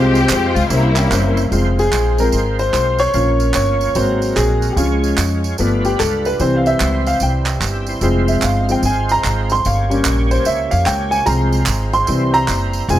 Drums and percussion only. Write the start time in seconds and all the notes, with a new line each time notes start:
0.15 tambourine
0.29 clap, tambourine
0.56 tambourine
0.70 tambourine
0.96 clap, tambourine
1.12 clap, tambourine
1.37 tambourine
1.52 tambourine
1.79 tambourine
1.93 clap, tambourine
2.18 tambourine
2.32 tambourine
2.59 tambourine
2.74 clap, tambourine
2.99 tambourine
3.14 tambourine
3.40 tambourine
3.54 clap, tambourine
3.81 tambourine
3.95 tambourine
4.22 tambourine
4.37 clap, tambourine
4.62 tambourine
4.77 tambourine
5.04 tambourine
5.18 clap, tambourine
5.44 tambourine
5.58 tambourine
5.85 tambourine
6.00 clap, tambourine
6.25 tambourine
6.40 tambourine
6.66 tambourine
6.80 clap, tambourine
7.07 tambourine
7.20 tambourine
7.46 clap, tambourine
7.62 clap, tambourine
7.87 tambourine
8.01 tambourine
8.28 tambourine
8.42 clap, tambourine
8.69 tambourine
8.83 tambourine
9.09 tambourine
9.24 clap, tambourine
9.50 tambourine
9.65 tambourine
9.91 tambourine
10.05 clap, tambourine
10.31 tambourine
10.45 tambourine
10.71 tambourine
10.86 clap, tambourine
11.12 tambourine
11.26 tambourine
11.52 tambourine
11.66 clap, tambourine
11.93 tambourine
12.07 tambourine
12.34 tambourine
12.48 clap, tambourine
12.73 tambourine
12.89 tambourine